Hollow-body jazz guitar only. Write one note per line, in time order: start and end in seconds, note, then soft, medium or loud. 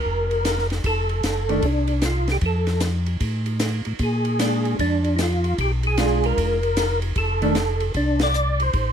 1.49 1.62 D#3 medium
1.49 1.62 A3 medium
1.49 1.62 D4 medium
4.39 4.99 G#3 soft
4.39 5.00 D4 medium
5.98 6.58 G#3 medium
5.98 6.58 D4 medium
5.98 6.59 F4 medium
7.42 7.55 D#3 medium
7.42 7.55 A3 medium
7.42 7.55 D4 medium